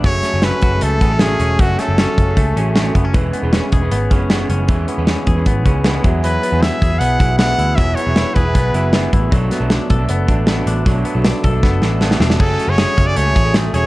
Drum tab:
CC |----------------|----------------|----------------|----------------|
HH |x-x-x-x-x-x-x-x-|x-x-x-x-x-x-x-x-|x-x-x-x-x-x-x-x-|x-x-x-x-x-x-x-x-|
SD |--o-o-------o---|--o-o-------o---|----o-------o---|----o-------o---|
BD |o-----o---o-----|o-----o-o-----o-|o-----o---o-----|o-----o-o-o---o-|

CC |----------------|----------------|----------------|----------------|
HH |x-x-x-x-x-x-x-x-|x-x-x-x-x-x-x-x-|x-x-x-x-x-x-x-x-|x-x-x-x---------|
SD |----o-------o---|----o-------o---|--o-o-------o---|----o---o-o-oooo|
BD |------o---o-----|o-----o-o-----o-|o-----o---o-----|o-----o-o-------|

CC |x---------------|
HH |--x-x-x-x-x-x-x-|
SD |----o-------o---|
BD |o-----o---o-----|